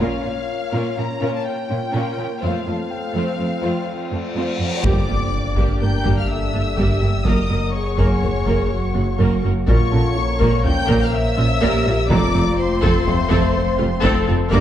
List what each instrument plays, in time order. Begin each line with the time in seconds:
Already playing: ambient pad A#3 C#5, grand piano A#5
0.00 cello section A#2, synth pluck A#3, viola section A#3 C#4, violin section F4 A#4 F5, ambient pad F4 A#4, taiko
0.23 cello section A#2, viola section A#3 C#4, synth pluck C#4, violin section F4 A#4
0.72 cello section A#2, synth pluck A#3, viola section A#3 C#4, violin section F4 A#4
0.97 cello section A#2, viola section A#3 C#4, synth pluck C#4, violin section F4 A#4 A#5
1.21 cello section A#2, synth pluck A#3, viola section A#3 C#4, violin section F4 A#4
1.35 violin section A5
1.47 violin section G5
1.70 cello section A#2, viola section A#3 C#4, synth pluck C#4, violin section C#4 F4
1.94 cello section A#2, synth pluck A#3, viola section A#3 C#4, violin section F4 A#4
2.18 cello section A#2, viola section A#3 C#4, violin section F4 A#4, synth pluck A#4
2.41 cello section F2, synth pluck F3, viola section A3 C4, ambient pad C4 A4 C5, violin section F4 C5 F5, reverse cymbal
2.67 cello section F2, synth pluck A3, viola section A3 C4, violin section F4 C5, grand piano A4 A5
2.91 grand piano G5
3.14 cello section F2, synth pluck F3, viola section A3 C4, violin section F4 C5
3.39 cello section F2, synth pluck A3, viola section A3 C4, violin section F4 C5
3.62 cello section F2, synth pluck F3, viola section A3 C4, violin section F4 C5
4.11 cello section F2, viola section A3 C4, synth pluck A3, violin section C4 A4
4.35 cello section F2, synth pluck F3, viola section A3 C4, violin section F4 C5
4.59 cello section F2, viola section A3 C4, violin section F4 C5, synth pluck F4
4.83 sub bass G1, double bass section G1, cello section G2, synth pluck G3, ambient pad A#3 D4 G4 D5, viola section A#3 G4, grand piano G4 G5, violin section D5 D6, taiko, impact
5.08 double bass section G1, cello section G2, viola section A#3 G4, synth pluck A#3
5.56 double bass section G1, cello section G2, synth pluck G3, viola section A#3 G4, taiko
5.81 double bass section G1, cello section G2, viola section A#3 G4, synth pluck A#3, french horn section A#4, violin section G5 G6
6.05 double bass section G1, cello section G2, synth pluck G3, viola section A#3 G4, taiko
6.17 violin section F5 F6
6.29 french horn section A4, violin section E5 E6
6.54 double bass section G1, cello section G2, viola section G3 D4, synth pluck A#3
6.77 double bass section G1, cello section G2, synth pluck G3, viola section A#3 G4, french horn section G4, taiko
7.01 double bass section G1, cello section G2, viola section A#3 G4, synth pluck G4
7.25 sub bass F#1, double bass section F#1, cello section F#2, synth pluck F#3, ambient pad F#3 A#3 F#5, viola section A#3 A#4, french horn section A#4, violin section D#5 D#6, taiko
7.50 double bass section F#1, cello section F#2, synth pluck A#3, viola section A#3 A#4
7.74 french horn section G#4, violin section C#5 C#6
7.98 double bass section F#1, cello section F#2, synth pluck F#3, viola section A#3 A#4, grand piano G#4 G#5, taiko
8.23 double bass section F#1, cello section F#2, synth pluck A#3, viola section A#3 A#4, taiko low
8.46 double bass section F#1, cello section F#2, synth pluck F#3, viola section A#3 A#4, taiko
8.71 french horn section F#4
8.95 double bass section F#1, cello section F#2, viola section F#3 F#4, synth pluck A#3
9.19 double bass section F#1, cello section F#2, synth pluck F#3, viola section A#3 A#4, taiko
9.43 double bass section F#1, cello section F#2, viola section A#3 A#4, synth pluck F#4
9.67 sub bass A#1, double bass section A#1, cello section A#2, ambient pad F3 C#5, synth pluck A#3, viola section A#3 A#4, french horn section F4, violin section C#5 C#6, taiko
9.92 double bass section A#1, cello section A#2, viola section A#3 A#4, synth pluck C#4, grand piano A4 A5
10.17 french horn section A#3
10.41 double bass section A#1, cello section A#2, synth pluck A#3, viola section A#3 A#4, taiko
10.64 double bass section A#1, cello section A#2, viola section A#3 A#4, synth pluck C#4, violin section G5 G6, taiko low
10.88 double bass section A#1, cello section A#2, viola section A#3 A#4, synth pluck A#3, taiko
11.01 violin section F5 F6
11.13 violin section E5 E6
11.37 double bass section A#1, cello section A#2, viola section F3 F4, synth pluck C#4
11.61 double bass section A#1, cello section A#2, synth pluck A#3, viola section A#3 A#4, french horn section G4, taiko
11.86 double bass section A#1, cello section A#2, viola section A#3 A#4, synth pluck A#4
12.10 sub bass F1, double bass section F1, cello section F2, synth pluck F3, ambient pad A3 C4 C5 F5, viola section C4 A4, french horn section F4, violin section D5 D6, grand piano A#5, taiko
12.34 double bass section F1, cello section F2, synth pluck A3, viola section C4 A4
12.58 violin section C5 C6
12.82 double bass section F1, cello section F2, synth pluck F3, viola section C4 A4, taiko
13.07 double bass section F1, cello section F2, synth pluck A3, french horn section A3, viola section C4 A4, grand piano C5 C6, taiko low
13.31 double bass section F1, cello section F2, synth pluck F3, viola section C4 A4, taiko
13.56 french horn section C5
13.79 double bass section F1, cello section F2, viola section A3 F4, synth pluck A3
14.03 double bass section F1, cello section F2, synth pluck F3, viola section C4 A4, french horn section A4, taiko
14.27 double bass section F1, cello section F2, viola section C4 A4, synth pluck F4
14.51 sub bass G1, double bass section G1, cello section G2, synth pluck G3, ambient pad G3 A#3 A#4 D5, viola section A#3 A#4, french horn section G4, violin section D5 D6, taiko